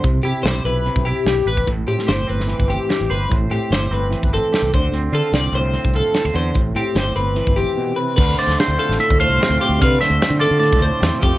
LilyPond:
<<
  \new Staff \with { instrumentName = "Clean electric guitar" } { \time 4/4 \key d \dorian \tempo 4 = 148 r1 | r1 | r1 | r1 |
r1 | r8 d''8 c''4 e''8 f''4. | f''8 e''4 d''8 d''4. r8 | }
  \new Staff \with { instrumentName = "Clean electric guitar" } { \time 4/4 \key d \dorian r8 g'8 c''8 b'4 g'4 b'8 | r8 g'8 c''8 b'4 g'4 b'8 | r8 g'8 c''8 b'4 a'4 c''8 | r8 a'8 d''8 c''4 a'4 c''8 |
r8 g'8 c''8 b'4 g'4 b'8 | b'8 c''4 a'4 c''4 g'8 | b'8 c''4 a'4 c''4 g'8 | }
  \new Staff \with { instrumentName = "Clean electric guitar" } { \time 4/4 \key d \dorian << { c'8 e'8 g'8 e'4 e'8 g'8 b'8 | r8 c'8 g'8 c'4 c'8 g'8 c''8 | r8 c'8 g'8 c'4 c'8 g'8 r8 | c'8 f'8 c'4 c'8 f'8 a'16 c''16 r8 |
r8 c'8 g'8 c'4 c'4.~ | c'4 c'8 f'4. c'8 f'8 | r4 c'8 f'4. c'4 | } \\ { c2 c2 | a,2 e2 | a,2 e4. d8~ | d4. a,2 d8 |
a,2 e4 b,8 c8 | d8 a4. a,8 a4. | d8 a4. a,8 a4 f8 | } >> }
  \new Staff \with { instrumentName = "Fingered electric bass" } { \clef bass \time 4/4 \key d \dorian c,8 c16 r16 b,,8 b,,8. b,,8 r16 b,,8 a,,8 | a,,8 a,16 r16 g,,8 g,,8. g,,8 r8 a,,16 g,,8 | a,,8 a,16 r16 g,,8 g,,8. g,,8 r8 c,16 d,8 | d,8 d16 r16 c,8 c,8. c,8 r8 d,16 e,8 |
a,,8 a,16 r16 g,,8 g,,8. g,,8 r4 r16 | d,8 r16 d,16 r16 d,16 r16 a,,16 r16 d,8 c,16 r16 d,16 r16 d,16 | c8 r16 d,16 r16 d8 d8 d,16 d,16 r16 e,16 r16 f,16 r16 | }
  \new DrumStaff \with { instrumentName = "Drums" } \drummode { \time 4/4 <hh bd>8 hh8 <hh sn>8 hh8 hh16 bd16 hh8 <hh sn>8 hh16 bd16 | <hh bd>8 hh16 sn16 <hh sn>8 hh16 sn16 hh16 bd16 hh8 <hh sn>8 hh8 | <hh bd>8 hh8 <hh sn>8 hh8 hh16 bd16 hh8 <hh sn>8 <hh bd>8 | hh8 hh8 <hh sn>8 hh8 hh16 bd16 hh8 <hh sn>8 hh8 |
<hh bd>8 hh8 <hh sn>8 hh8 hh16 bd16 hh8 r4 | <cymc bd>8 hh16 sn16 <hh sn>8 hh16 sn16 hh16 bd16 hh8 <hh sn>8 hh8 | <hh bd>8 <hh sn>8 <hh sn>8 hh8 hh16 bd16 hh8 <hh sn>8 <hh bd>8 | }
>>